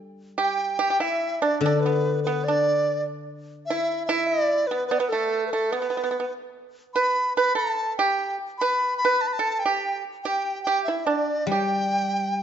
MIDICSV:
0, 0, Header, 1, 4, 480
1, 0, Start_track
1, 0, Tempo, 818554
1, 948, Time_signature, 2, 2, 24, 8
1, 3340, Tempo, 826446
1, 7251, End_track
2, 0, Start_track
2, 0, Title_t, "Dizi"
2, 0, Program_c, 0, 73
2, 245, Note_on_c, 0, 79, 69
2, 460, Note_off_c, 0, 79, 0
2, 479, Note_on_c, 0, 79, 76
2, 596, Note_on_c, 0, 76, 70
2, 605, Note_off_c, 0, 79, 0
2, 834, Note_on_c, 0, 74, 63
2, 843, Note_off_c, 0, 76, 0
2, 942, Note_off_c, 0, 74, 0
2, 946, Note_on_c, 0, 74, 76
2, 1030, Note_off_c, 0, 74, 0
2, 1030, Note_on_c, 0, 74, 44
2, 1061, Note_on_c, 0, 71, 67
2, 1069, Note_off_c, 0, 74, 0
2, 1305, Note_off_c, 0, 71, 0
2, 1309, Note_on_c, 0, 71, 67
2, 1431, Note_on_c, 0, 74, 76
2, 1440, Note_off_c, 0, 71, 0
2, 1788, Note_off_c, 0, 74, 0
2, 2144, Note_on_c, 0, 76, 80
2, 2365, Note_off_c, 0, 76, 0
2, 2378, Note_on_c, 0, 76, 85
2, 2504, Note_on_c, 0, 74, 83
2, 2513, Note_off_c, 0, 76, 0
2, 2738, Note_on_c, 0, 71, 69
2, 2747, Note_off_c, 0, 74, 0
2, 2853, Note_off_c, 0, 71, 0
2, 2857, Note_on_c, 0, 71, 71
2, 2882, Note_on_c, 0, 74, 60
2, 2891, Note_off_c, 0, 71, 0
2, 2927, Note_on_c, 0, 71, 74
2, 2936, Note_off_c, 0, 74, 0
2, 2983, Note_on_c, 0, 69, 67
2, 2992, Note_off_c, 0, 71, 0
2, 3192, Note_off_c, 0, 69, 0
2, 3205, Note_on_c, 0, 71, 43
2, 3230, Note_on_c, 0, 69, 58
2, 3239, Note_off_c, 0, 71, 0
2, 3350, Note_on_c, 0, 71, 66
2, 3358, Note_off_c, 0, 69, 0
2, 3707, Note_off_c, 0, 71, 0
2, 4061, Note_on_c, 0, 83, 76
2, 4290, Note_off_c, 0, 83, 0
2, 4312, Note_on_c, 0, 83, 81
2, 4423, Note_off_c, 0, 83, 0
2, 4427, Note_on_c, 0, 81, 76
2, 4652, Note_off_c, 0, 81, 0
2, 4662, Note_on_c, 0, 79, 69
2, 4889, Note_off_c, 0, 79, 0
2, 5015, Note_on_c, 0, 83, 76
2, 5240, Note_off_c, 0, 83, 0
2, 5244, Note_on_c, 0, 83, 83
2, 5381, Note_on_c, 0, 81, 80
2, 5390, Note_off_c, 0, 83, 0
2, 5418, Note_on_c, 0, 83, 66
2, 5426, Note_off_c, 0, 81, 0
2, 5450, Note_on_c, 0, 81, 78
2, 5459, Note_off_c, 0, 83, 0
2, 5603, Note_on_c, 0, 79, 68
2, 5612, Note_off_c, 0, 81, 0
2, 5853, Note_off_c, 0, 79, 0
2, 5973, Note_on_c, 0, 79, 67
2, 6200, Note_off_c, 0, 79, 0
2, 6206, Note_on_c, 0, 79, 79
2, 6324, Note_off_c, 0, 79, 0
2, 6327, Note_on_c, 0, 76, 67
2, 6420, Note_off_c, 0, 76, 0
2, 6420, Note_on_c, 0, 76, 51
2, 6453, Note_on_c, 0, 74, 63
2, 6461, Note_off_c, 0, 76, 0
2, 6692, Note_on_c, 0, 79, 73
2, 6701, Note_off_c, 0, 74, 0
2, 7251, Note_off_c, 0, 79, 0
2, 7251, End_track
3, 0, Start_track
3, 0, Title_t, "Pipa"
3, 0, Program_c, 1, 105
3, 222, Note_on_c, 1, 67, 64
3, 448, Note_off_c, 1, 67, 0
3, 463, Note_on_c, 1, 67, 68
3, 522, Note_off_c, 1, 67, 0
3, 529, Note_on_c, 1, 67, 43
3, 578, Note_off_c, 1, 67, 0
3, 588, Note_on_c, 1, 64, 57
3, 811, Note_off_c, 1, 64, 0
3, 832, Note_on_c, 1, 62, 57
3, 942, Note_off_c, 1, 62, 0
3, 972, Note_on_c, 1, 62, 65
3, 1073, Note_off_c, 1, 62, 0
3, 1090, Note_on_c, 1, 59, 51
3, 1303, Note_off_c, 1, 59, 0
3, 1329, Note_on_c, 1, 59, 53
3, 1431, Note_off_c, 1, 59, 0
3, 1456, Note_on_c, 1, 62, 53
3, 1777, Note_off_c, 1, 62, 0
3, 2172, Note_on_c, 1, 64, 71
3, 2380, Note_off_c, 1, 64, 0
3, 2398, Note_on_c, 1, 64, 75
3, 2724, Note_off_c, 1, 64, 0
3, 2763, Note_on_c, 1, 59, 56
3, 2863, Note_off_c, 1, 59, 0
3, 2880, Note_on_c, 1, 59, 64
3, 2924, Note_off_c, 1, 59, 0
3, 2931, Note_on_c, 1, 59, 54
3, 2981, Note_off_c, 1, 59, 0
3, 3005, Note_on_c, 1, 57, 52
3, 3217, Note_off_c, 1, 57, 0
3, 3243, Note_on_c, 1, 57, 52
3, 3344, Note_off_c, 1, 57, 0
3, 3357, Note_on_c, 1, 59, 54
3, 3390, Note_off_c, 1, 59, 0
3, 3411, Note_on_c, 1, 59, 33
3, 3440, Note_off_c, 1, 59, 0
3, 3459, Note_on_c, 1, 59, 38
3, 3486, Note_off_c, 1, 59, 0
3, 3500, Note_on_c, 1, 59, 38
3, 3528, Note_off_c, 1, 59, 0
3, 3538, Note_on_c, 1, 59, 38
3, 3569, Note_off_c, 1, 59, 0
3, 3580, Note_on_c, 1, 59, 35
3, 3612, Note_off_c, 1, 59, 0
3, 3632, Note_on_c, 1, 59, 39
3, 3660, Note_off_c, 1, 59, 0
3, 4072, Note_on_c, 1, 71, 68
3, 4295, Note_off_c, 1, 71, 0
3, 4314, Note_on_c, 1, 71, 62
3, 4415, Note_off_c, 1, 71, 0
3, 4417, Note_on_c, 1, 69, 66
3, 4647, Note_off_c, 1, 69, 0
3, 4672, Note_on_c, 1, 67, 67
3, 4894, Note_off_c, 1, 67, 0
3, 5035, Note_on_c, 1, 71, 76
3, 5256, Note_off_c, 1, 71, 0
3, 5287, Note_on_c, 1, 71, 68
3, 5466, Note_off_c, 1, 71, 0
3, 5486, Note_on_c, 1, 69, 57
3, 5625, Note_off_c, 1, 69, 0
3, 5640, Note_on_c, 1, 67, 53
3, 5855, Note_off_c, 1, 67, 0
3, 5987, Note_on_c, 1, 67, 65
3, 6207, Note_off_c, 1, 67, 0
3, 6228, Note_on_c, 1, 67, 61
3, 6337, Note_off_c, 1, 67, 0
3, 6352, Note_on_c, 1, 64, 51
3, 6456, Note_off_c, 1, 64, 0
3, 6459, Note_on_c, 1, 62, 60
3, 6682, Note_off_c, 1, 62, 0
3, 6720, Note_on_c, 1, 67, 49
3, 7251, Note_off_c, 1, 67, 0
3, 7251, End_track
4, 0, Start_track
4, 0, Title_t, "Guzheng"
4, 0, Program_c, 2, 107
4, 0, Note_on_c, 2, 55, 39
4, 0, Note_on_c, 2, 62, 29
4, 0, Note_on_c, 2, 67, 37
4, 0, Note_on_c, 2, 69, 34
4, 0, Note_on_c, 2, 74, 33
4, 99, Note_off_c, 2, 62, 0
4, 222, Note_off_c, 2, 67, 0
4, 340, Note_off_c, 2, 69, 0
4, 462, Note_off_c, 2, 55, 0
4, 467, Note_off_c, 2, 74, 0
4, 942, Note_on_c, 2, 50, 46
4, 2379, Note_off_c, 2, 50, 0
4, 6691, Note_on_c, 2, 55, 49
4, 7251, Note_off_c, 2, 55, 0
4, 7251, End_track
0, 0, End_of_file